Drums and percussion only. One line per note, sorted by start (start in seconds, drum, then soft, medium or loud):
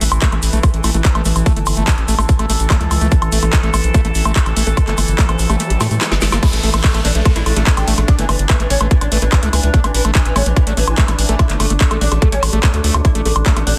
0.01 open hi-hat loud
0.01 shaker medium
0.12 high woodblock medium
0.12 shaker medium
0.21 kick loud
0.21 clap loud
0.21 closed hi-hat medium
0.21 shaker soft
0.32 closed hi-hat soft
0.32 high woodblock soft
0.42 open hi-hat medium
0.42 shaker medium
0.53 closed hi-hat soft
0.53 shaker medium
0.63 kick loud
0.63 closed hi-hat medium
0.63 high woodblock medium
0.63 shaker soft
0.74 closed hi-hat soft
0.84 open hi-hat loud
0.84 high woodblock soft
0.84 shaker medium
0.94 closed hi-hat soft
0.94 shaker soft
1.05 kick loud
1.05 clap loud
1.05 closed hi-hat medium
1.05 shaker soft
1.15 closed hi-hat soft
1.15 high woodblock medium
1.25 open hi-hat loud
1.25 shaker loud
1.36 closed hi-hat soft
1.36 high woodblock soft
1.36 shaker medium
1.46 kick loud
1.46 closed hi-hat medium
1.46 shaker soft
1.56 closed hi-hat soft
1.66 open hi-hat loud
1.66 high woodblock medium
1.66 shaker medium
1.77 closed hi-hat soft
1.77 shaker soft
1.88 kick loud
1.88 clap loud
1.88 closed hi-hat medium
1.88 high woodblock soft
1.88 shaker soft
1.98 closed hi-hat soft
2.08 open hi-hat medium
2.08 shaker medium
2.19 closed hi-hat soft
2.19 high woodblock medium
2.19 shaker medium
2.29 kick loud
2.29 closed hi-hat medium
2.29 shaker soft
2.39 closed hi-hat soft
2.39 high woodblock soft
2.50 open hi-hat loud
2.50 shaker medium
2.59 closed hi-hat soft
2.59 shaker medium
2.70 kick loud
2.70 clap loud
2.70 closed hi-hat medium
2.70 high woodblock medium
2.70 shaker soft
2.81 closed hi-hat soft
2.91 open hi-hat medium
2.91 high woodblock soft
2.91 shaker medium
3.01 closed hi-hat soft
3.01 shaker soft
3.12 kick loud
3.12 closed hi-hat medium
3.12 shaker soft
3.22 closed hi-hat soft
3.22 high woodblock medium
3.32 open hi-hat loud
3.32 shaker medium
3.42 closed hi-hat soft
3.42 high woodblock soft
3.42 shaker soft
3.53 kick loud
3.53 clap loud
3.53 closed hi-hat medium
3.53 shaker soft
3.63 closed hi-hat soft
3.74 open hi-hat medium
3.74 high woodblock medium
3.74 shaker medium
3.84 closed hi-hat soft
3.84 shaker soft
3.94 kick loud
3.94 closed hi-hat medium
3.94 high woodblock soft
3.94 shaker soft
4.05 closed hi-hat soft
4.15 open hi-hat loud
4.15 shaker medium
4.25 closed hi-hat soft
4.25 high woodblock medium
4.25 shaker medium
4.36 kick loud
4.36 clap loud
4.36 closed hi-hat medium
4.36 shaker soft
4.46 closed hi-hat soft
4.46 high woodblock soft
4.56 open hi-hat medium
4.56 shaker medium
4.67 closed hi-hat soft
4.67 shaker soft
4.77 kick loud
4.77 closed hi-hat medium
4.77 high woodblock medium
4.77 shaker soft
4.88 clap soft
4.88 closed hi-hat soft
4.98 open hi-hat loud
4.98 high woodblock soft
4.98 shaker medium
5.08 closed hi-hat soft
5.08 shaker soft
5.19 kick loud
5.19 clap loud
5.19 closed hi-hat medium
5.19 shaker soft
5.29 closed hi-hat soft
5.29 high woodblock medium
5.39 open hi-hat medium
5.39 shaker medium
5.50 closed hi-hat soft
5.50 high woodblock soft
5.50 shaker soft
5.60 closed hi-hat medium
5.60 shaker soft
5.70 closed hi-hat soft
5.81 snare medium
5.81 open hi-hat loud
5.81 high woodblock medium
5.81 shaker medium
5.91 closed hi-hat soft
5.91 shaker medium
6.01 snare medium
6.01 clap loud
6.01 closed hi-hat medium
6.01 high woodblock soft
6.01 shaker soft
6.12 snare medium
6.12 closed hi-hat soft
6.21 snare loud
6.21 open hi-hat loud
6.21 shaker medium
6.32 snare medium
6.32 closed hi-hat soft
6.32 high woodblock medium
6.32 shaker medium
6.43 kick loud
6.43 closed hi-hat medium
6.43 crash loud
6.43 high woodblock soft
6.53 closed hi-hat medium
6.63 open hi-hat loud
6.74 closed hi-hat medium
6.74 high woodblock medium
6.84 kick loud
6.84 clap loud
6.84 closed hi-hat medium
6.94 closed hi-hat medium
6.94 high woodblock soft
7.05 open hi-hat medium
7.15 closed hi-hat medium
7.25 kick loud
7.25 closed hi-hat medium
7.25 high woodblock medium
7.36 closed hi-hat medium
7.46 open hi-hat loud
7.46 high woodblock soft
7.57 closed hi-hat medium
7.67 kick loud
7.67 clap loud
7.67 closed hi-hat medium
7.77 closed hi-hat medium
7.77 high woodblock medium
7.88 open hi-hat medium
7.98 closed hi-hat medium
7.98 high woodblock soft
8.08 kick loud
8.08 closed hi-hat medium
8.19 closed hi-hat medium
8.29 open hi-hat loud
8.29 high woodblock medium
8.39 closed hi-hat medium
8.50 kick loud
8.50 clap loud
8.50 closed hi-hat medium
8.50 high woodblock soft
8.60 closed hi-hat medium
8.70 open hi-hat loud
8.81 closed hi-hat medium
8.81 high woodblock medium
8.91 kick loud
8.91 closed hi-hat medium
9.01 closed hi-hat medium
9.01 high woodblock soft
9.12 open hi-hat loud
9.22 closed hi-hat medium
9.32 kick loud
9.32 clap loud
9.32 closed hi-hat medium
9.32 high woodblock medium
9.43 closed hi-hat medium
9.53 open hi-hat loud
9.53 high woodblock soft
9.63 closed hi-hat medium
9.74 kick loud
9.74 closed hi-hat medium
9.84 closed hi-hat medium
9.84 high woodblock medium
9.94 open hi-hat loud
10.05 closed hi-hat medium
10.05 high woodblock soft
10.15 kick loud
10.15 clap loud
10.15 closed hi-hat medium
10.25 closed hi-hat medium
10.36 open hi-hat loud
10.36 high woodblock medium
10.46 closed hi-hat medium
10.57 kick loud
10.57 closed hi-hat medium
10.57 high woodblock soft
10.67 closed hi-hat medium
10.77 open hi-hat loud
10.88 closed hi-hat medium
10.88 high woodblock medium
10.98 kick loud
10.98 clap loud
10.98 closed hi-hat medium
11.08 closed hi-hat medium
11.08 high woodblock soft
11.19 open hi-hat loud
11.29 closed hi-hat medium
11.39 kick loud
11.39 closed hi-hat medium
11.39 high woodblock medium
11.50 clap soft
11.50 closed hi-hat medium
11.60 open hi-hat loud
11.60 high woodblock soft
11.70 closed hi-hat medium
11.81 kick loud
11.81 clap loud
11.81 closed hi-hat medium
11.91 closed hi-hat medium
11.91 high woodblock medium
12.01 open hi-hat loud
12.12 closed hi-hat medium
12.12 high woodblock soft
12.22 kick loud
12.22 closed hi-hat medium
12.32 closed hi-hat medium
12.43 open hi-hat loud
12.43 high woodblock medium
12.53 closed hi-hat medium
12.63 kick loud
12.63 clap loud
12.63 closed hi-hat medium
12.63 high woodblock soft
12.74 closed hi-hat medium
12.84 open hi-hat loud
12.94 closed hi-hat medium
12.94 high woodblock medium
13.05 kick loud
13.05 closed hi-hat medium
13.05 high woodblock soft
13.15 closed hi-hat medium
13.25 open hi-hat loud
13.36 closed hi-hat medium
13.36 high woodblock medium
13.46 kick loud
13.46 clap loud
13.46 closed hi-hat medium
13.57 closed hi-hat medium
13.57 high woodblock soft
13.67 open hi-hat medium